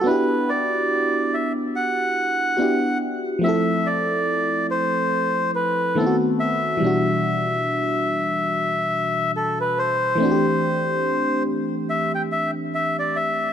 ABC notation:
X:1
M:4/4
L:1/16
Q:"Swing 16ths" 1/4=71
K:Em
V:1 name="Melodica"
B2 d4 e2 f6 z2 | e2 d4 c4 B2 A2 e2- | e12 A B c2- | c6 z2 e g e2 e d e2 |]
V:2 name="FM electric piano"
[B,DEFG]12 [B,DEFG]4 | [=F,A,CEA]12 [^D,A,B,CE^F]4 | [B,,E,G,DF]16 | [E,A,CDFG]16 |]